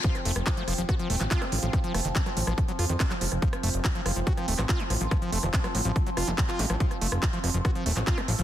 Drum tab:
HH |xxoxxxoxxxoxxxox|xxoxxxoxxxoxxxox|xxoxxxoxxxoxxxox|xxoxxxoxxxoxxxox|
CP |----x------xx---|----x-------xx--|----x------xx---|----x-------xx--|
SD |-r-r--r-r--r-r--|r-r--r-r--r-r--r|-r--r-r--r-r--r-|r--r-r--r-r--r-r|
BD |o---o---o---o---|o---o---o---o---|o---o---o---o---|o---o---o---o---|

HH |xxoxxxoxxxo-xxox|
CP |----x------xx---|
SD |-r-r--r-r--r-r--|
BD |o---o---o---o---|